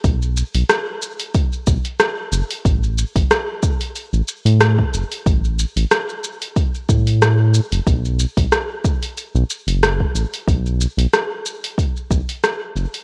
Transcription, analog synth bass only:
0.04 B1
0.55 B1
1.67 B1
2.32 F#1
2.65 A1
3.15 A1
4.13 A1
4.45 A2
4.93 F#1
5.26 A1
5.76 A1
6.89 A2
7.72 F#1
7.86 B1
8.37 B1
9.35 B1
9.67 F#1
10.14 A1
10.47 B1
10.97 B1
12.10 B1
12.76 F#1

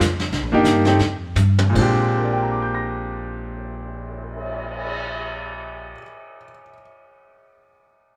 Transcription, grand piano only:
0.52 A#3 D4 D#4 G4
0.86 A3 C4 D#4 G4
1.70 A#2 G#3
1.76 C4 D4
1.82 G4
2.17 A#4
2.24 D5
2.33 G5
2.42 A#5
2.52 D6
2.62 G6
2.74 A#6

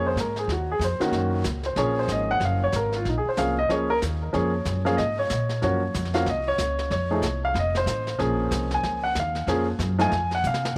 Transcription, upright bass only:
Already playing: F2
0.16 G#2
0.47 D#2
0.79 F2
1.00 muted upright bass stroke
1.11 F#2
1.44 C#2
1.76 A#1
2.08 G#1
2.40 F#1
2.73 G#1
3.05 A#1
3.25 muted upright bass stroke
3.37 C2
3.70 C#2
4.02 D#2
4.34 F2
4.66 F#2
4.98 G#2
5.30 A#2
5.63 F#2
5.95 F2
6.26 C2
6.58 C#2
6.91 F2
7.22 C2
7.54 F1
7.86 A1
8.19 A#1
8.51 C2
8.83 C#2
9.15 D#2
9.47 F2
9.79 F#2
10.11 F2
10.44 C3

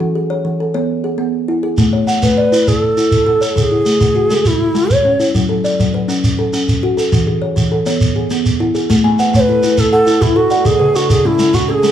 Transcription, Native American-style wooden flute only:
2.22 B4
2.68 A4
3.57 G#4 A4
4.47 E4
4.92 C#5
9.36 C#5
9.40 B4
9.79 A4
9.93 A4
10.22 E4
10.36 F#4
10.66 G#4
10.96 F#4
11.11 G#4
11.26 E4
11.54 F#4
11.70 G#4 A4

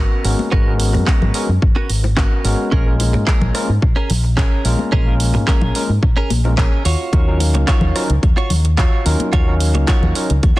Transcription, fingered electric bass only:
0.25 G#1
0.52 G#1
0.94 F#2
1.22 G#1
1.49 F#2
1.62 G#1
1.90 G#1
2.45 G#1
2.72 A#1
3.14 G#2
3.42 A#1
3.69 G#2
3.82 A#1
4.10 A#1
4.65 A#1
4.93 A#1
5.34 G#2
5.62 A#1
5.89 G#2
6.03 A#1
6.30 A#1
6.85 D#2
7.13 D#2
7.55 C#2
7.82 D#2
8.10 C#2
8.23 D#2
8.51 D#2
9.06 D#2
9.33 D#2
9.75 C#2
10.02 D#2
10.30 C#2
10.43 D#2

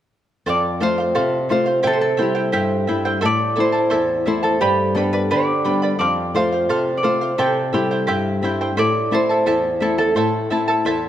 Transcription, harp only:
0.49 D5
0.83 C5
1.52 C5
1.87 A4
1.93 C5
2.01 A4
2.22 G4
3.25 D5
3.60 C5
4.28 C5
4.43 A4
4.61 G4
4.95 A4
5.13 B4
5.31 D5
5.99 D5
6.35 C5
6.97 D5
7.04 C5
7.38 A4
7.74 G4
8.79 D5
9.14 C5
9.82 A4
9.98 A4

